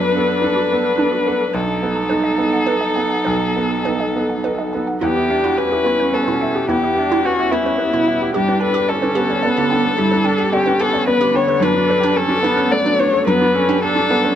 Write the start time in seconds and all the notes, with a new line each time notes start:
Already playing: F#2 B3 D4 A4 B4
0.01 B4
0.16 B3 A4
0.29 B4
0.42 D4 A4
0.56 F#4
0.72 B3 A4
0.84 A4
0.98 D4 A4
1.12 F#4
1.26 B3 A4
1.40 A4
1.53 B1 B3 D#4 A4 B4
1.68 A5
1.83 B3 A4
1.96 A5
2.09 D#4 A4 B4
2.23 D#5
2.38 B3 A4
2.53 F#5
2.66 D#4 A4 B4
2.81 D#5
2.96 B3 A4 F#5
3.10 F#5
3.25 B1 B4
3.40 A5
3.56 B3 A4
3.70 A5
3.85 D#4 A4 B4
4.00 D#5
4.16 B3 A4
4.30 F#5
4.44 D#4 A4 B4
4.59 D#5
4.73 B3 A4 F#5
4.87 F#5
5.01 E2 B3 E4 G4
5.16 E4 G4
5.29 D4 G4 E5
5.44 E4 F#4
5.57 C#4 G4 B4
5.71 E4 G4
5.84 B3 E4
5.99 C#4 B4
6.13 B3 A4 B4
6.28 B2 E4
6.41 E4 E5
6.55 G4
6.68 E2 B3 E4 G4
6.81 E4 G4
6.94 D4 G4 E5
7.09 E4 F#4
7.23 C#4 F#4 G4 B4
7.38 E4 G4
7.52 B3 E4
7.65 C#4 B4
7.78 B3 B4
7.93 B2 E4
8.07 E4 E5
8.21 G4
8.34 G2 D3 B3 D4 G4 A4
8.48 D4 B4
8.61 A4 B4 G5
8.74 G4
8.88 C#4 A4 D5
9.02 D4 B4
9.15 B3 G4
9.29 C#4 D5
9.43 B3 D5
9.57 D3 G4
9.70 D4 G5
9.85 A4 B4
9.97 G2 E4 G4
10.11 D4 B4
10.24 D4 A4 G5
10.38 G4
10.52 C#4 G4 A4 D5
10.66 D4 B4
10.79 B3 G4 A4
10.93 C#4 D5
11.06 B3 B4 D5
11.20 D3 G4
11.34 D4 C#5 G5
11.47 A4 B4
11.60 F#2 B3 D4 A4 B4
11.74 D4 F#4
11.87 A4 B4
12.00 D4 G4
12.14 C#4 A4
12.29 D4 F#4
12.43 B3 D4
12.56 C#4 A4
12.71 A3 B3 A4 D5
12.84 F#3 D4
12.99 D4 B4 C#5
13.13 F#4 A4
13.27 F#2 B3 D4 B4
13.41 D4 F#4
13.54 C#4 A4 B4
13.69 D4 G4
13.83 D4 A4
13.96 D4 F#4
14.10 B3 D4
14.24 C#4 A4